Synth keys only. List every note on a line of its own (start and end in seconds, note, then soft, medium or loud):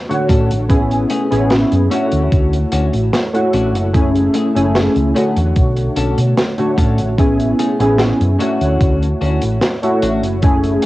0.09 0.65 D3 medium
0.09 0.65 A3 medium
0.09 0.65 F#4 medium
0.09 0.65 C#5 medium
0.69 1.26 B3 medium
0.69 1.26 C#4 medium
0.69 1.26 E4 medium
0.69 1.27 G#4 loud
1.31 1.86 B3 medium
1.31 1.87 C#4 medium
1.31 1.87 E4 medium
1.31 1.87 G#4 loud
1.90 3.28 A3 medium
1.90 3.29 E4 medium
1.90 3.30 F#4 medium
1.90 3.29 C#5 medium
3.33 3.89 A3 medium
3.33 3.90 E4 medium
3.33 3.90 F#4 medium
3.33 3.89 C#5 medium
3.93 4.50 A3 medium
3.93 4.50 C#4 medium
3.93 4.51 E4 medium
3.93 4.51 G#4 loud
4.55 5.11 A3 medium
4.55 5.11 C#4 medium
4.55 5.11 E4 medium
4.55 5.11 G#4 loud
5.14 6.54 D3 medium
5.14 6.53 A3 medium
5.14 6.54 F#4 medium
5.14 6.53 C#5 medium
6.58 7.14 D3 medium
6.58 7.13 A3 medium
6.58 7.14 F#4 medium
6.58 7.14 C#5 medium
7.18 7.75 B3 medium
7.18 7.75 C#4 medium
7.18 7.75 E4 medium
7.18 7.75 G#4 loud
7.79 8.35 B3 medium
7.79 8.35 C#4 medium
7.79 8.36 E4 medium
7.79 8.36 G#4 loud
8.38 9.77 A3 medium
8.38 9.78 E4 medium
8.38 9.78 F#4 medium
8.38 9.77 C#5 medium
9.82 10.38 A3 medium
9.82 10.38 E4 medium
9.82 10.39 F#4 medium
9.82 10.38 C#5 medium
10.42 10.86 A3 medium
10.42 10.86 C#4 medium
10.42 10.86 E4 medium
10.42 10.86 G#4 loud